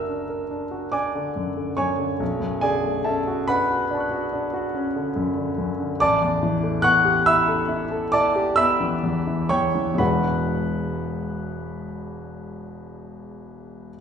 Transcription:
0.00 2.18 F#1 soft
0.00 1.36 F#2 soft
0.00 1.15 D3 soft
0.00 2.23 A#3 soft
0.00 0.09 D4 soft
0.00 0.71 F#4 soft
0.00 0.22 A#4 soft
0.00 0.91 E5 medium
0.00 0.91 A#5 medium
0.00 0.94 E6 medium
0.09 0.43 D4 soft
0.29 0.64 A#4 soft
0.51 0.85 D4 soft
0.71 1.06 F#4 soft
0.92 1.28 D4 soft
0.92 1.74 D5 medium
0.92 1.74 G#5 medium
0.92 1.78 D6 medium
1.15 1.50 D3 soft
1.36 1.70 F#2 soft
1.57 1.91 D3 soft
1.77 2.12 F#2 soft
1.77 2.58 C#5 medium
1.77 2.58 G#5 medium
1.77 2.62 C#6 medium
1.99 2.20 D3 soft
2.20 5.96 B1 soft
2.40 2.75 F#2 soft
2.61 2.98 D3 soft
2.61 3.03 G#4 medium
2.61 3.03 D5 medium
2.61 3.05 G#5 medium
2.83 3.19 A3 soft
3.04 3.40 C#4 soft
3.04 3.46 A4 medium
3.04 3.45 E5 soft
3.04 3.48 A5 medium
3.27 3.61 F#4 soft
3.48 3.82 D4 soft
3.48 5.96 B4 medium
3.48 5.96 F#5 medium
3.48 5.99 B5 medium
3.71 4.03 F#4 soft
3.91 4.24 D4 soft
3.91 5.96 D5 soft
3.91 5.98 A5 soft
3.97 5.99 C#6 soft
3.97 6.01 F#6 soft
4.11 4.44 F#4 soft
4.33 4.66 D4 soft
4.54 4.87 F#4 soft
4.75 5.08 C#4 soft
4.96 5.29 D3 soft
5.16 5.50 F#2 soft
5.37 5.71 D3 soft
5.58 5.92 F#2 soft
5.80 6.00 D3 soft
6.00 9.96 A1 medium
6.00 6.79 D5 medium
6.00 6.79 A5 medium
6.00 6.83 D6 loud
6.22 6.54 E2 soft
6.43 6.75 E3 soft
6.63 6.96 A3 soft
6.82 7.17 B3 medium
6.82 7.23 F#5 medium
6.82 7.23 C#6 medium
6.82 7.25 F#6 loud
7.05 7.39 G4 soft
7.26 7.61 E4 medium
7.26 8.10 E5 medium
7.26 8.10 B5 medium
7.26 8.14 E6 medium
7.48 7.83 A4 medium
7.69 8.04 E4 soft
7.91 8.27 A4 medium
8.12 8.49 E4 medium
8.12 8.55 D5 medium
8.12 8.55 A5 medium
8.12 8.57 D6 loud
8.35 8.71 G4 medium
8.56 8.94 B3 soft
8.56 9.47 E5 medium
8.56 9.46 B5 medium
8.56 9.50 E6 loud
8.80 9.17 E3 soft
9.04 9.41 E2 soft
9.27 9.65 E3 soft
9.49 9.89 E2 soft
9.49 9.96 C#5 medium
9.49 9.96 G5 medium
9.49 9.99 C#6 medium
9.75 9.94 E3 soft
9.94 14.01 E2 medium
9.94 14.01 E3 soft
9.94 14.01 G#3 soft
9.94 14.01 D4 soft
9.98 14.01 E1 soft
9.98 14.01 F#4 soft
9.98 13.89 B4 medium
9.98 13.89 F#5 medium
9.98 13.93 B5 medium

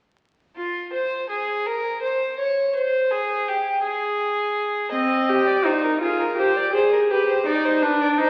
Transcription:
0.56 0.90 F4 medium
0.93 1.29 C5 medium
1.30 1.68 G#4 medium
1.66 2.01 A#4 medium
2.02 2.38 C5 medium
2.39 2.75 C#5 medium
2.75 3.12 C5 medium
3.11 3.49 G#4 medium
3.48 3.82 G4 medium
3.83 4.90 G#4 medium
4.92 5.31 C4 medium
4.92 5.48 D#5 medium
5.30 5.67 G4 medium
5.47 5.67 D5 medium
5.65 6.01 D#4 medium
5.65 5.83 C5 medium
5.84 5.91 A#4 medium
6.01 6.37 F4 medium
6.01 6.22 G#4 medium
6.20 6.40 A#4 medium
6.38 6.73 G4 medium
6.38 6.58 C5 medium
6.56 6.74 D5 medium
6.74 7.12 G#4 medium
6.74 6.92 C5 medium
6.92 6.99 A#4 medium
7.11 7.46 G4 medium
7.11 7.27 B4 medium
7.28 7.47 C5 medium
7.46 7.84 D#4 medium
7.46 7.66 D5 medium
7.65 7.84 C5 medium
7.83 8.20 D4 medium
7.83 8.01 B4 medium
8.01 8.08 D5 medium
8.18 8.30 D#4 medium
8.18 8.30 C5 medium

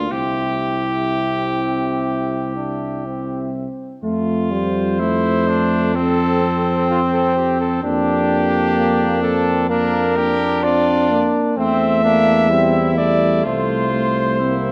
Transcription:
0.00 0.13 A#3 medium
0.00 0.13 F4 medium
0.11 3.66 C2 medium
0.11 0.99 C4 soft
0.11 3.50 E4 medium
0.11 3.54 G4 medium
0.11 3.66 E5 medium
1.09 2.52 C4 medium
2.56 3.07 D4 medium
3.06 4.03 C4 medium
4.03 7.80 F2 medium
4.03 4.53 A3 medium
4.03 5.01 F4 medium
4.52 5.01 G3 medium
4.52 5.91 C5 loud
5.00 5.97 A3 medium
5.00 5.49 E4 medium
5.48 5.97 D4 medium
5.95 7.80 C4 loud
5.95 6.43 C4 medium
5.95 7.84 C4 medium
5.95 6.88 A4 loud
6.43 7.81 C4 medium
6.90 7.01 F4 medium
7.13 7.36 A4 medium
7.36 7.60 G4 medium
7.60 7.83 A4 medium
7.83 11.26 F2 medium
7.83 9.66 A#3 medium
7.83 8.75 D4 medium
7.83 9.66 D4 medium
7.83 9.20 G4 loud
8.77 9.22 A#3 medium
9.23 9.71 C4 medium
9.23 9.69 A4 loud
9.70 10.17 A#3 medium
9.70 10.35 A#3 medium
9.70 10.18 D4 medium
9.70 10.65 A#4 loud
10.17 11.59 D4 loud
10.17 10.65 G4 medium
10.63 11.12 C4 medium
10.63 11.30 F4 medium
10.63 11.29 D5 loud
11.10 11.59 A#3 medium
11.57 13.47 E2 medium
11.57 12.52 A3 medium
11.57 12.04 C4 medium
11.57 12.01 C4 medium
11.57 12.93 E5 loud
12.04 12.49 A#3 medium
12.04 12.49 D4 medium
12.50 12.97 G3 medium
12.50 12.99 C4 medium
12.50 13.45 E4 medium
12.97 13.47 G3 medium
12.97 14.12 A3 medium
12.97 13.44 D5 loud
13.44 14.72 C2 medium
13.44 13.92 A3 medium
13.44 14.39 F4 medium
13.44 14.72 C5 loud
13.93 14.42 A3 medium
14.40 14.72 A#3 medium
14.40 14.72 C4 medium
14.40 14.72 E4 medium

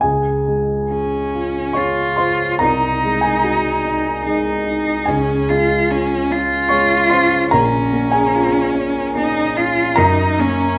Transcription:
0.01 2.56 C#2 soft
0.01 0.89 G#4 medium
0.01 1.74 G#5 medium
0.48 1.17 G#3 soft
0.91 1.78 C#4 medium
0.91 1.59 G#4 soft
1.34 2.01 F4 soft
1.73 2.61 F4 medium
1.73 2.43 G#4 soft
1.73 2.15 C#5 medium
1.73 2.17 C#6 medium
2.16 2.61 F4 soft
2.16 2.57 C5 soft
2.16 2.60 C6 medium
2.59 5.04 C2 soft
2.59 4.23 D#4 medium
2.59 3.19 A#4 medium
2.59 3.22 A#5 medium
3.04 3.69 G#3 soft
3.21 5.03 G#4 medium
3.21 5.04 G#5 medium
3.44 4.09 F#4 soft
3.85 4.50 D#4 soft
4.26 4.91 G#3 soft
4.26 5.11 D#4 medium
4.66 5.08 D#4 soft
5.06 7.48 C#2 soft
5.06 5.51 C#4 medium
5.06 6.67 G#4 medium
5.06 6.70 G#5 medium
5.49 6.14 G#3 soft
5.49 5.92 F4 medium
5.90 6.33 C#4 medium
5.90 6.55 F4 soft
6.30 6.95 C#4 soft
6.30 7.53 F4 medium
6.69 7.36 G#3 soft
6.69 7.08 C#5 medium
6.69 7.10 C#6 medium
7.10 7.52 C#4 soft
7.10 7.49 C5 medium
7.10 7.51 C6 medium
7.51 9.96 A#1 medium
7.51 9.14 C#4 medium
7.51 8.10 A#4 medium
7.51 8.13 A#5 medium
7.93 8.59 A#3 soft
8.12 9.94 G#4 medium
8.12 9.98 G#5 medium
8.34 9.00 F4 medium
8.75 9.41 C#4 soft
9.16 9.82 A#3 soft
9.16 9.58 D#4 medium
9.57 9.99 C#4 soft
9.57 10.00 F4 medium
9.96 10.78 F#2 medium
9.96 10.41 D#4 medium
9.96 10.78 A#4 medium
9.96 10.78 A#5 medium
10.39 10.78 A#3 soft
10.39 10.78 C#4 medium

